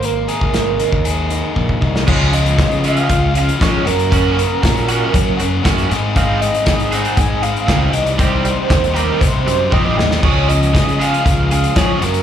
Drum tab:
CC |----------------|x---------------|----------------|----------------|
HH |x-x-x-x-x-x-----|--xxxxxxx-xxx-xx|x-x-xxx-x-x-xxx-|x-xxxxxxx-xxx-xx|
SD |----o----------o|----o-------o---|----o-------o-o-|----o-------o---|
T1 |----------------|----------------|----------------|----------------|
T2 |----------------|----------------|----------------|----------------|
BD |---o---o----ooo-|o---o---o---o---|o---o---o---o---|o---o---o---o---|

CC |----------------|x---------------|
HH |x-x-xxx-x-x-----|--xxxxxxx-xxx-xx|
SD |----o---------oo|----o-------o---|
T1 |------------o---|----------------|
T2 |-------------o--|----------------|
BD |o---o---o---o---|o---o---o---o---|